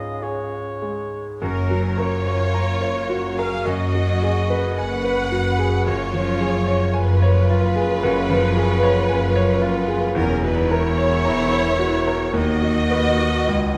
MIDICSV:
0, 0, Header, 1, 11, 480
1, 0, Start_track
1, 0, Key_signature, 6, "major"
1, 0, Tempo, 1197605
1, 568, Time_signature, 4, 2, 24, 8
1, 568, Tempo, 1119403
1, 2008, Tempo, 1084991
1, 3448, Tempo, 1067616
1, 4888, Tempo, 1115242
1, 5982, End_track
2, 0, Start_track
2, 0, Title_t, "Flute section"
2, 0, Program_c, 0, 73
2, 0, Note_on_c, 0, 77, 56
2, 335, Note_off_c, 0, 77, 0
2, 5982, End_track
3, 0, Start_track
3, 0, Title_t, "Cor anglais"
3, 0, Program_c, 1, 69
3, 0, Note_on_c, 1, 75, 63
3, 92, Note_on_c, 1, 73, 48
3, 98, Note_off_c, 1, 75, 0
3, 570, Note_off_c, 1, 73, 0
3, 5982, End_track
4, 0, Start_track
4, 0, Title_t, "Viola section"
4, 0, Program_c, 2, 48
4, 574, Note_on_c, 2, 70, 77
4, 796, Note_off_c, 2, 70, 0
4, 810, Note_on_c, 2, 73, 86
4, 1412, Note_on_c, 2, 77, 82
4, 1413, Note_off_c, 2, 73, 0
4, 1532, Note_off_c, 2, 77, 0
4, 1540, Note_on_c, 2, 75, 84
4, 2013, Note_off_c, 2, 75, 0
4, 2019, Note_on_c, 2, 78, 89
4, 2492, Note_on_c, 2, 73, 85
4, 2498, Note_off_c, 2, 78, 0
4, 2963, Note_off_c, 2, 73, 0
4, 2971, Note_on_c, 2, 71, 99
4, 4403, Note_off_c, 2, 71, 0
4, 4412, Note_on_c, 2, 70, 83
4, 4527, Note_off_c, 2, 70, 0
4, 4527, Note_on_c, 2, 71, 84
4, 4647, Note_off_c, 2, 71, 0
4, 4650, Note_on_c, 2, 73, 106
4, 5363, Note_off_c, 2, 73, 0
4, 5365, Note_on_c, 2, 75, 104
4, 5982, Note_off_c, 2, 75, 0
4, 5982, End_track
5, 0, Start_track
5, 0, Title_t, "Violin section"
5, 0, Program_c, 3, 48
5, 568, Note_on_c, 3, 70, 63
5, 792, Note_off_c, 3, 70, 0
5, 803, Note_on_c, 3, 73, 74
5, 1409, Note_off_c, 3, 73, 0
5, 1410, Note_on_c, 3, 77, 66
5, 1528, Note_on_c, 3, 75, 70
5, 1531, Note_off_c, 3, 77, 0
5, 2004, Note_on_c, 3, 78, 75
5, 2007, Note_off_c, 3, 75, 0
5, 2481, Note_off_c, 3, 78, 0
5, 2492, Note_on_c, 3, 73, 75
5, 2962, Note_off_c, 3, 73, 0
5, 2976, Note_on_c, 3, 71, 85
5, 4405, Note_off_c, 3, 71, 0
5, 4407, Note_on_c, 3, 70, 75
5, 4524, Note_off_c, 3, 70, 0
5, 4532, Note_on_c, 3, 71, 71
5, 4647, Note_off_c, 3, 71, 0
5, 4652, Note_on_c, 3, 73, 86
5, 5364, Note_off_c, 3, 73, 0
5, 5367, Note_on_c, 3, 75, 86
5, 5982, Note_off_c, 3, 75, 0
5, 5982, End_track
6, 0, Start_track
6, 0, Title_t, "Grand piano"
6, 0, Program_c, 4, 0
6, 0, Control_c, 4, 64, 127
6, 0, Note_on_c, 4, 44, 42
6, 0, Note_on_c, 4, 56, 36
6, 88, Note_on_c, 4, 68, 42
6, 235, Note_off_c, 4, 56, 0
6, 329, Note_on_c, 4, 56, 37
6, 477, Note_off_c, 4, 68, 0
6, 566, Note_off_c, 4, 56, 0
6, 568, Note_on_c, 4, 42, 66
6, 576, Control_c, 4, 64, 0
6, 579, Note_off_c, 4, 44, 0
6, 650, Control_c, 4, 64, 127
6, 689, Note_on_c, 4, 54, 52
6, 808, Note_on_c, 4, 70, 54
6, 882, Note_off_c, 4, 54, 0
6, 929, Note_on_c, 4, 73, 50
6, 1002, Note_off_c, 4, 70, 0
6, 1050, Note_on_c, 4, 82, 57
6, 1123, Note_off_c, 4, 73, 0
6, 1166, Note_on_c, 4, 73, 59
6, 1244, Note_off_c, 4, 82, 0
6, 1287, Note_on_c, 4, 66, 55
6, 1361, Note_off_c, 4, 73, 0
6, 1413, Note_on_c, 4, 70, 51
6, 1482, Note_off_c, 4, 66, 0
6, 1515, Note_off_c, 4, 42, 0
6, 1528, Note_on_c, 4, 42, 65
6, 1533, Note_off_c, 4, 70, 0
6, 1540, Control_c, 4, 64, 0
6, 1612, Control_c, 4, 64, 127
6, 1650, Note_on_c, 4, 54, 48
6, 1772, Note_on_c, 4, 68, 51
6, 1842, Note_off_c, 4, 54, 0
6, 1890, Note_on_c, 4, 71, 62
6, 1962, Note_off_c, 4, 68, 0
6, 2009, Note_on_c, 4, 80, 57
6, 2082, Note_off_c, 4, 71, 0
6, 2127, Note_on_c, 4, 71, 62
6, 2203, Note_off_c, 4, 80, 0
6, 2249, Note_on_c, 4, 66, 55
6, 2323, Note_off_c, 4, 71, 0
6, 2367, Note_on_c, 4, 68, 58
6, 2444, Note_off_c, 4, 66, 0
6, 2474, Note_off_c, 4, 42, 0
6, 2490, Note_off_c, 4, 68, 0
6, 2491, Note_on_c, 4, 42, 66
6, 2500, Control_c, 4, 64, 0
6, 2577, Control_c, 4, 64, 127
6, 2609, Note_on_c, 4, 53, 52
6, 2729, Note_on_c, 4, 68, 56
6, 2803, Note_off_c, 4, 53, 0
6, 2847, Note_on_c, 4, 73, 57
6, 2923, Note_off_c, 4, 68, 0
6, 2957, Note_off_c, 4, 42, 0
6, 2963, Note_on_c, 4, 80, 62
6, 3041, Note_off_c, 4, 73, 0
6, 3090, Note_on_c, 4, 73, 66
6, 3159, Note_off_c, 4, 80, 0
6, 3214, Note_on_c, 4, 65, 60
6, 3282, Note_off_c, 4, 73, 0
6, 3327, Note_on_c, 4, 68, 62
6, 3403, Note_off_c, 4, 65, 0
6, 3449, Note_on_c, 4, 42, 72
6, 3520, Note_off_c, 4, 68, 0
6, 3567, Note_on_c, 4, 53, 59
6, 3691, Note_on_c, 4, 68, 60
6, 3760, Note_off_c, 4, 53, 0
6, 3807, Note_on_c, 4, 73, 70
6, 3881, Note_off_c, 4, 68, 0
6, 3912, Note_off_c, 4, 42, 0
6, 3923, Note_on_c, 4, 80, 66
6, 3997, Note_off_c, 4, 73, 0
6, 4044, Note_on_c, 4, 73, 70
6, 4115, Note_off_c, 4, 80, 0
6, 4161, Note_on_c, 4, 65, 67
6, 4235, Note_off_c, 4, 73, 0
6, 4280, Note_on_c, 4, 68, 59
6, 4354, Note_off_c, 4, 65, 0
6, 4401, Note_on_c, 4, 40, 80
6, 4402, Note_off_c, 4, 68, 0
6, 4411, Control_c, 4, 64, 0
6, 4478, Control_c, 4, 64, 127
6, 4529, Note_on_c, 4, 54, 58
6, 4654, Note_on_c, 4, 70, 70
6, 4721, Note_off_c, 4, 54, 0
6, 4771, Note_on_c, 4, 73, 59
6, 4845, Note_off_c, 4, 70, 0
6, 4895, Note_on_c, 4, 82, 65
6, 4961, Note_off_c, 4, 73, 0
6, 5012, Note_on_c, 4, 73, 64
6, 5079, Note_off_c, 4, 82, 0
6, 5129, Note_on_c, 4, 66, 56
6, 5198, Note_off_c, 4, 73, 0
6, 5249, Note_on_c, 4, 70, 52
6, 5316, Note_off_c, 4, 66, 0
6, 5342, Note_off_c, 4, 40, 0
6, 5361, Note_on_c, 4, 39, 72
6, 5365, Note_off_c, 4, 70, 0
6, 5369, Control_c, 4, 64, 0
6, 5448, Control_c, 4, 64, 127
6, 5483, Note_on_c, 4, 54, 51
6, 5607, Note_on_c, 4, 71, 56
6, 5676, Note_off_c, 4, 54, 0
6, 5729, Note_on_c, 4, 66, 56
6, 5800, Note_off_c, 4, 71, 0
6, 5832, Note_off_c, 4, 39, 0
6, 5848, Note_off_c, 4, 66, 0
6, 5850, Note_on_c, 4, 37, 64
6, 5854, Control_c, 4, 64, 0
6, 5931, Control_c, 4, 64, 127
6, 5982, Note_off_c, 4, 37, 0
6, 5982, End_track
7, 0, Start_track
7, 0, Title_t, "Clarinet"
7, 0, Program_c, 5, 71
7, 0, Note_on_c, 5, 65, 42
7, 335, Note_off_c, 5, 65, 0
7, 5982, End_track
8, 0, Start_track
8, 0, Title_t, "Violin section"
8, 0, Program_c, 6, 48
8, 569, Note_on_c, 6, 61, 65
8, 793, Note_off_c, 6, 61, 0
8, 808, Note_on_c, 6, 65, 76
8, 1412, Note_off_c, 6, 65, 0
8, 1414, Note_on_c, 6, 68, 71
8, 1533, Note_off_c, 6, 68, 0
8, 1533, Note_on_c, 6, 66, 72
8, 2009, Note_off_c, 6, 66, 0
8, 2010, Note_on_c, 6, 71, 77
8, 2484, Note_off_c, 6, 71, 0
8, 2494, Note_on_c, 6, 65, 78
8, 2973, Note_off_c, 6, 65, 0
8, 2977, Note_on_c, 6, 65, 76
8, 4388, Note_off_c, 6, 65, 0
8, 4411, Note_on_c, 6, 61, 75
8, 4526, Note_off_c, 6, 61, 0
8, 4529, Note_on_c, 6, 63, 70
8, 4648, Note_off_c, 6, 63, 0
8, 4653, Note_on_c, 6, 64, 93
8, 5362, Note_on_c, 6, 66, 83
8, 5364, Note_off_c, 6, 64, 0
8, 5982, Note_off_c, 6, 66, 0
8, 5982, End_track
9, 0, Start_track
9, 0, Title_t, "Bassoon"
9, 0, Program_c, 7, 70
9, 0, Note_on_c, 7, 61, 43
9, 418, Note_off_c, 7, 61, 0
9, 5982, End_track
10, 0, Start_track
10, 0, Title_t, "Cello section"
10, 0, Program_c, 8, 48
10, 569, Note_on_c, 8, 42, 64
10, 994, Note_off_c, 8, 42, 0
10, 1053, Note_on_c, 8, 42, 62
10, 1477, Note_off_c, 8, 42, 0
10, 1533, Note_on_c, 8, 42, 65
10, 1954, Note_off_c, 8, 42, 0
10, 2013, Note_on_c, 8, 42, 68
10, 2439, Note_off_c, 8, 42, 0
10, 2492, Note_on_c, 8, 42, 72
10, 2916, Note_off_c, 8, 42, 0
10, 2975, Note_on_c, 8, 42, 67
10, 3394, Note_off_c, 8, 42, 0
10, 3452, Note_on_c, 8, 42, 75
10, 3873, Note_off_c, 8, 42, 0
10, 3931, Note_on_c, 8, 42, 75
10, 4349, Note_off_c, 8, 42, 0
10, 4409, Note_on_c, 8, 40, 80
10, 4835, Note_off_c, 8, 40, 0
10, 4890, Note_on_c, 8, 40, 73
10, 5305, Note_off_c, 8, 40, 0
10, 5362, Note_on_c, 8, 39, 75
10, 5789, Note_off_c, 8, 39, 0
10, 5848, Note_on_c, 8, 37, 61
10, 5982, Note_off_c, 8, 37, 0
10, 5982, End_track
11, 0, Start_track
11, 0, Title_t, "Double bass section"
11, 0, Program_c, 10, 48
11, 572, Note_on_c, 10, 30, 70
11, 996, Note_off_c, 10, 30, 0
11, 1053, Note_on_c, 10, 30, 70
11, 1477, Note_off_c, 10, 30, 0
11, 1535, Note_on_c, 10, 30, 67
11, 1954, Note_off_c, 10, 30, 0
11, 2009, Note_on_c, 10, 30, 73
11, 2437, Note_off_c, 10, 30, 0
11, 2493, Note_on_c, 10, 30, 73
11, 2916, Note_off_c, 10, 30, 0
11, 2975, Note_on_c, 10, 30, 76
11, 3394, Note_off_c, 10, 30, 0
11, 3450, Note_on_c, 10, 30, 79
11, 3872, Note_off_c, 10, 30, 0
11, 3930, Note_on_c, 10, 30, 78
11, 4349, Note_off_c, 10, 30, 0
11, 4405, Note_on_c, 10, 28, 86
11, 4832, Note_off_c, 10, 28, 0
11, 4891, Note_on_c, 10, 28, 78
11, 5306, Note_off_c, 10, 28, 0
11, 5365, Note_on_c, 10, 39, 69
11, 5791, Note_off_c, 10, 39, 0
11, 5851, Note_on_c, 10, 37, 64
11, 5982, Note_off_c, 10, 37, 0
11, 5982, End_track
0, 0, End_of_file